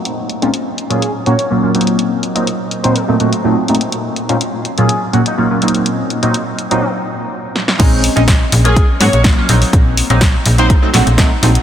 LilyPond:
<<
  \new Staff \with { instrumentName = "Horn section" } { \time 4/4 \key ees \dorian \tempo 4 = 124 r4. r16 aes'8 r16 des''8 r4 | r4. r16 c''16 r2 | r4. r16 aes'8 r8 ees'16 ees'16 r8. | r4. r16 ees'16 r2 |
r4. r16 aes'8 r16 des''8 r4 | r4. r16 c''16 r2 | }
  \new Staff \with { instrumentName = "Analog polysynth" } { \time 4/4 \key ees \dorian r8. <bes, aes c' des' ees' f'>16 r8. <bes, ges bes des' f'>16 r8 <bes, ges bes des' ges'>16 r16 <bes, ges bes des' f'>16 <bes, ges bes des' f'>16 <bes, ges bes c' ees'>8~ | <bes, ges bes c' ees'>8. <bes, ges bes c' ees'>16 r8. <bes, ges bes c' ees'>16 r16 <bes, fis a c' ees'>16 <bes, fis a c' fis'>16 r16 <bes, fis a c' ees'>16 r16 <bes, fis a c' ees'>16 r16 | r8. <bes, aes c' des' ees' f'>16 r8. <bes, ges bes des' f'>16 r8 <bes, ges bes des' ges'>16 r16 <bes, ges bes des' f'>16 <bes, ges bes des' f'>16 <bes, ges bes c' ees'>8~ | <bes, ges bes c' ees'>8. <bes, ges bes c' ees'>16 r8. <bes, ges bes c' ees'>16 r2 |
<aes c' des' ees'>8. <aes c' des' ees'>16 r8. <ges bes des' f'>16 r8 <ges bes des' ges'>16 r16 <ges bes des' f'>16 <ges bes des' f'>16 <ges bes c' ees'>8~ | <ges bes c' ees'>8. <ges bes c' ees'>16 r8. <ges bes c' ees'>16 r16 <ges a c' ees'>16 <ges a c' ges'>16 r16 <ges a c' ees'>16 r16 <ges a c' ees'>16 r16 | }
  \new Staff \with { instrumentName = "FM bass" } { \clef bass \time 4/4 \key ees \dorian r1 | r1 | r1 | r1 |
bes,,8 r16 bes,,8 r16 bes,,8 r8 aes,16 bes,,8 r16 bes,,16 r16 | bes,,8 r16 bes,,8 r16 bes,,8 r16 bes,,16 bes,,16 bes,,8 r16 bes,,16 r16 | }
  \new DrumStaff \with { instrumentName = "Drums" } \drummode { \time 4/4 hh8 hh16 hh16 hh8 hh16 hh16 hh8 hh16 hh16 r8 hh32 hh32 hh16 | hh8 hh16 hh16 hh8 hh16 hh16 hh8 hh16 hh16 r8 hh32 hh32 hh16 | hh8 hh16 hh16 hh8 hh16 hh16 hh8 hh16 hh16 r8 hh32 hh32 hh16 | hh8 hh16 hh16 hh8 hh16 hh16 r4 r8 sn16 sn16 |
<cymc hh bd>8 hho16 hh16 <hh bd sn>8 hho16 hh16 <hh bd>8 hho16 hh16 <bd sn>8 hho16 hho16 | <hh bd>8 hho16 hh16 <hh bd sn>8 hho16 hh16 <hh bd>8 <hho sn>16 hh16 <bd sn>8 hho16 hh16 | }
>>